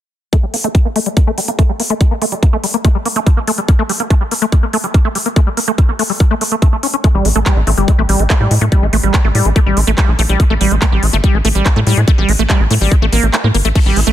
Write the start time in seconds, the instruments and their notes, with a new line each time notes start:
0.33 acid bass A3, kick, closed hi-hat
0.43 acid bass G3
0.54 acid bass A#3, open hi-hat
0.64 acid bass A3, closed hi-hat
0.75 acid bass G3, kick, closed hi-hat
0.85 acid bass A#3
0.96 acid bass A3, open hi-hat
1.06 acid bass G3, closed hi-hat
1.17 acid bass A#3, kick, closed hi-hat
1.27 acid bass A3
1.38 acid bass G3, open hi-hat
1.48 acid bass A#3, closed hi-hat
1.59 acid bass A3, kick, closed hi-hat
1.69 acid bass G3
1.80 acid bass A#3, open hi-hat
1.90 acid bass A3, closed hi-hat
2.01 acid bass G3, kick, closed hi-hat
2.11 acid bass A#3
2.22 acid bass A3, open hi-hat
2.32 acid bass G3, closed hi-hat
2.43 acid bass A#3, kick, closed hi-hat
2.53 acid bass A3
2.64 acid bass G3, open hi-hat
2.74 acid bass A#3, closed hi-hat
2.85 acid bass A3, kick, closed hi-hat
2.95 acid bass G3
3.05 acid bass A#3, open hi-hat
3.16 acid bass A3, closed hi-hat
3.26 acid bass G3, kick, closed hi-hat
3.37 acid bass A#3
3.47 acid bass A3, open hi-hat
3.58 acid bass G3, closed hi-hat
3.68 acid bass A#3, kick, closed hi-hat
3.79 acid bass A3
3.89 acid bass G3, open hi-hat
4.00 acid bass A#3, closed hi-hat
4.10 acid bass A3, kick, closed hi-hat
4.21 acid bass G3
4.31 acid bass A#3, open hi-hat
4.42 acid bass A3, closed hi-hat
4.52 acid bass G3, kick, closed hi-hat
4.63 acid bass A#3
4.73 acid bass A3, open hi-hat
4.84 acid bass G3, closed hi-hat
4.94 acid bass A#3, kick, closed hi-hat
5.05 acid bass A3
5.15 acid bass G3, open hi-hat
5.26 acid bass A#3, closed hi-hat
5.36 acid bass A3, kick, closed hi-hat
5.47 acid bass G3
5.57 acid bass A#3, open hi-hat
5.68 acid bass A3, closed hi-hat
5.78 acid bass G3, kick, closed hi-hat
5.89 acid bass A#3
5.99 acid bass A3, open hi-hat
6.10 acid bass G3, open hi-hat
6.20 acid bass A#3, kick, closed hi-hat
6.31 acid bass A3
6.41 acid bass A3, open hi-hat
6.52 acid bass A3, closed hi-hat
6.62 acid bass A3, kick, closed hi-hat
6.73 acid bass A3
6.83 acid bass C#4, open hi-hat
6.94 acid bass C#4, closed hi-hat
7.04 acid bass A3, kick, closed hi-hat
7.15 analog synth bass A1, acid bass G3
7.25 analog synth bass A1, acid bass A3, open hi-hat
7.36 analog synth bass A1, acid bass A3, closed hi-hat
7.46 acid bass G3, kick, clap, closed hi-hat
7.57 analog synth bass A1, acid bass A3
7.67 analog synth bass A1, acid bass A3, open hi-hat
7.78 analog synth bass G1, acid bass G3, closed hi-hat
7.88 acid bass A3, kick, closed hi-hat
7.99 analog synth bass A1, acid bass A3
8.09 analog synth bass A1, acid bass G3, open hi-hat
8.19 analog synth bass A1, acid bass A3, closed hi-hat
8.30 acid bass A3, kick, clap, closed hi-hat
8.40 analog synth bass A2, acid bass G3
8.51 analog synth bass A2, acid bass A3, open hi-hat
8.61 analog synth bass A2, acid bass A3, closed hi-hat
8.72 acid bass G3, kick, closed hi-hat
8.82 analog synth bass A1, acid bass A3
8.93 analog synth bass A1, acid bass A3, open hi-hat
9.03 analog synth bass A1, acid bass G3, closed hi-hat
9.14 acid bass A3, kick, clap, closed hi-hat
9.24 analog synth bass A1, acid bass A3
9.35 analog synth bass A2, acid bass G3, open hi-hat
9.45 analog synth bass A1, acid bass A3, closed hi-hat
9.56 acid bass A3, kick, closed hi-hat
9.66 analog synth bass A1, acid bass G3
9.77 analog synth bass A1, acid bass A3, open hi-hat
9.87 analog synth bass A1, acid bass A3, closed hi-hat
9.98 acid bass G3, kick, clap, closed hi-hat
10.08 analog synth bass A#1, acid bass A3
10.19 analog synth bass A#1, acid bass A3, open hi-hat
10.29 analog synth bass A#1, acid bass G3, closed hi-hat
10.40 acid bass A3, kick, closed hi-hat
10.50 analog synth bass A1, acid bass A3
10.61 analog synth bass A1, acid bass G3, open hi-hat
10.71 analog synth bass A1, acid bass A3, closed hi-hat
10.82 acid bass A3, kick, clap, closed hi-hat
10.92 analog synth bass A1, acid bass G3
11.03 analog synth bass A1, acid bass A3, open hi-hat
11.13 analog synth bass G1, acid bass A3, closed hi-hat
11.24 acid bass G3, kick, closed hi-hat
11.34 analog synth bass A1, acid bass A3
11.45 analog synth bass A1, acid bass A3, open hi-hat
11.55 analog synth bass A1, acid bass G3, closed hi-hat
11.66 acid bass A3, kick, clap, closed hi-hat
11.76 analog synth bass A2, acid bass A3
11.87 analog synth bass A2, acid bass G3, open hi-hat
11.97 analog synth bass A2, acid bass A3, closed hi-hat
12.08 acid bass A3, kick, closed hi-hat
12.18 analog synth bass A1, acid bass G3
12.29 analog synth bass A1, acid bass A3, open hi-hat
12.39 analog synth bass A1, acid bass A3, closed hi-hat
12.50 acid bass G3, kick, clap, closed hi-hat
12.60 analog synth bass A1, acid bass A3
12.71 analog synth bass A2, acid bass A3, open hi-hat
12.81 analog synth bass A1, acid bass G3, open hi-hat
12.92 acid bass A3, kick, closed hi-hat
13.02 analog synth bass A1, acid bass A3
13.12 analog synth bass A1, acid bass A#3, open hi-hat
13.23 analog synth bass A1, acid bass A3, closed hi-hat
13.33 acid bass A3, clap, closed hi-hat
13.44 analog synth bass A2, acid bass A#3
13.54 analog synth bass G1, acid bass A#3, open hi-hat
13.65 analog synth bass A1, acid bass A3, closed hi-hat
13.75 acid bass A3, ambient pad E4, kick, closed hi-hat, crash
13.86 analog synth bass A1, acid bass G3
13.96 analog synth bass A1, acid bass A3, open hi-hat
14.07 analog synth bass A1, acid bass A3, closed hi-hat